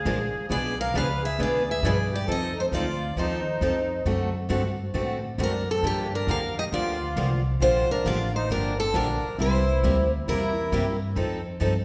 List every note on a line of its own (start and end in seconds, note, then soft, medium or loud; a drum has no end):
0.00 0.46 G#4 medium
0.00 0.51 F5 medium
0.05 0.32 A#1 medium
0.05 0.17 D3 medium
0.05 0.17 F3 medium
0.05 0.17 G#3 medium
0.05 0.18 A#3 loud
0.05 0.17 D4 medium
0.05 0.18 F4 medium
0.05 0.18 G#4 loud
0.05 0.18 A#4 loud
0.34 muted upright bass stroke soft
0.50 0.93 B1 medium
0.50 0.72 B2 medium
0.50 0.72 F3 medium
0.50 0.72 B3 medium
0.50 0.73 D4 medium
0.50 0.77 G#4 medium
0.50 0.73 G#4 medium
0.50 0.73 B4 medium
0.50 0.80 D5 loud
0.79 0.94 A#4 medium
0.79 0.94 F5 loud
0.94 1.37 C#2 medium
0.94 1.06 B2 medium
0.94 1.06 F3 medium
0.94 1.07 B3 medium
0.94 1.07 D4 medium
0.94 1.07 G#4 medium
0.94 1.21 B4 medium
0.94 1.07 B4 medium
0.94 1.23 F5 medium
1.22 1.37 G#4 medium
1.22 1.40 E5 medium
1.39 1.82 D2 medium
1.39 1.61 B2 medium
1.39 1.61 F3 medium
1.39 1.61 B3 medium
1.39 1.62 D4 medium
1.39 1.65 G#4 medium
1.39 1.62 G#4 medium
1.39 1.62 B4 medium
1.39 1.71 D5 medium
1.66 1.80 G#4 medium
1.71 1.86 E5 loud
1.82 2.26 G2 loud
1.82 1.96 B2 medium
1.82 1.96 F3 medium
1.82 1.96 B3 medium
1.82 1.96 D4 medium
1.82 2.09 G#4 medium
1.82 1.96 G#4 medium
1.86 1.97 B4 loud
1.86 2.14 D5 medium
2.11 2.26 G4 medium
2.15 2.29 D5 medium
2.27 2.71 F2 medium
2.27 2.50 F3 medium
2.27 2.50 C4 medium
2.27 2.51 D#4 medium
2.27 2.54 A4 medium
2.27 2.51 A4 medium
2.32 2.59 D#5 loud
2.56 2.63 D#4 medium
2.60 2.65 C5 medium
2.72 3.15 D2 medium
2.72 2.84 F3 medium
2.72 2.84 C4 medium
2.72 2.85 D#4 loud
2.72 3.14 F4 medium
2.72 2.85 A4 medium
2.72 3.19 D5 loud
3.16 3.60 D#2 medium
3.16 3.39 F3 medium
3.16 3.39 C4 medium
3.16 4.02 D#4 medium
3.16 3.40 D#4 medium
3.16 3.40 A4 medium
3.16 4.03 C5 medium
3.61 4.04 F2 loud
3.61 3.73 F3 medium
3.61 3.74 C4 medium
3.61 3.74 D#4 medium
3.61 3.74 A4 medium
4.05 4.49 F#2 medium
4.05 4.28 D3 medium
4.05 4.28 A3 medium
4.05 4.28 C4 medium
4.05 4.28 F#4 medium
4.05 4.28 A4 medium
4.49 4.93 G2 medium
4.49 4.61 D3 medium
4.49 4.62 A3 medium
4.49 4.62 C4 medium
4.49 4.62 F#4 medium
4.49 4.62 A4 medium
4.94 5.38 A2 medium
4.94 5.16 D3 medium
4.94 5.17 A3 medium
4.94 5.17 C4 medium
4.94 5.17 F#4 medium
4.94 5.17 A4 medium
5.38 5.82 F#2 medium
5.38 5.51 D3 medium
5.38 5.51 A3 medium
5.38 5.51 C4 medium
5.38 5.67 D4 medium
5.38 5.51 F#4 medium
5.38 5.51 A4 medium
5.43 5.71 A#4 medium
5.70 5.84 C4 medium
5.70 5.84 A4 medium
5.83 6.26 G2 medium
5.83 6.06 D3 medium
5.83 6.06 F3 medium
5.83 6.06 A#3 medium
5.83 6.11 A#3 medium
5.83 6.06 D4 medium
5.83 6.06 G4 medium
5.87 6.12 G4 medium
6.13 6.28 D4 medium
6.13 6.30 A#4 medium
6.27 6.71 F2 medium
6.27 6.40 D3 medium
6.27 6.40 F3 medium
6.27 6.40 A#3 medium
6.27 6.40 D4 medium
6.27 6.40 G4 medium
6.27 6.55 A#4 medium
6.27 6.56 F5 medium
6.57 6.64 G4 medium
6.57 6.64 D#5 medium
6.72 7.15 D2 medium
6.72 6.95 D3 medium
6.72 6.95 F3 medium
6.72 6.95 A#3 medium
6.72 6.95 D4 medium
6.72 7.41 F4 medium
6.72 6.95 G4 medium
6.72 7.42 D5 medium
7.16 7.60 C2 medium
7.16 7.29 D3 medium
7.16 7.29 F3 medium
7.16 7.29 A#3 medium
7.16 7.29 D4 medium
7.16 7.29 G4 medium
7.60 7.88 A#1 medium
7.60 7.83 D3 medium
7.60 7.84 F3 medium
7.60 7.84 A#3 medium
7.60 7.84 D4 medium
7.60 7.88 F4 medium
7.60 7.84 G4 medium
7.60 7.89 C5 loud
7.89 8.05 D4 medium
7.89 8.07 A#4 medium
7.89 muted upright bass stroke soft
8.05 8.48 A1 loud
8.05 8.17 D3 medium
8.05 8.18 F3 medium
8.05 8.18 A#3 medium
8.05 8.18 D4 medium
8.05 8.32 F4 medium
8.05 8.18 G4 medium
8.05 8.35 D5 loud
8.34 8.49 D#4 medium
8.34 8.50 C5 medium
8.50 8.93 G1 medium
8.50 8.72 D3 medium
8.50 8.72 F3 medium
8.50 8.73 A#3 medium
8.50 8.73 D4 medium
8.50 8.77 D4 medium
8.50 8.73 G4 medium
8.50 8.79 A#4 medium
8.79 8.94 C4 medium
8.79 8.94 A4 loud
8.94 9.21 A#1 loud
8.94 9.06 D3 medium
8.94 9.06 F3 medium
8.94 9.06 A#3 medium
8.94 9.07 D4 medium
8.94 9.37 D4 medium
8.94 9.07 G4 loud
8.94 9.37 A#4 medium
9.23 muted upright bass stroke soft
9.38 9.82 C2 medium
9.38 9.61 C3 medium
9.38 9.61 G3 medium
9.38 9.61 A#3 medium
9.38 10.08 E4 medium
9.38 9.62 E4 medium
9.38 9.62 G4 medium
9.38 10.09 C5 medium
9.83 10.26 D2 medium
9.83 9.95 C3 medium
9.83 9.96 G3 medium
9.83 9.96 A#3 medium
9.83 9.96 E4 medium
9.83 9.96 G4 medium
10.27 10.71 E2 medium
10.27 10.50 C3 medium
10.27 10.50 G3 medium
10.27 10.50 A#3 medium
10.27 10.97 E4 medium
10.27 10.51 E4 medium
10.27 10.51 G4 medium
10.27 10.97 A#4 loud
10.72 11.15 G2 medium
10.72 10.84 C3 medium
10.72 10.84 G3 medium
10.72 10.84 A#3 medium
10.72 10.85 E4 medium
10.72 10.85 G4 medium
11.16 11.59 F2 medium
11.16 11.38 F3 medium
11.16 11.39 C4 medium
11.16 11.39 D#4 medium
11.16 11.39 A4 medium
11.60 11.85 G2 medium
11.60 11.72 F3 medium
11.60 11.72 C4 medium
11.60 11.73 D#4 medium
11.60 11.73 A4 medium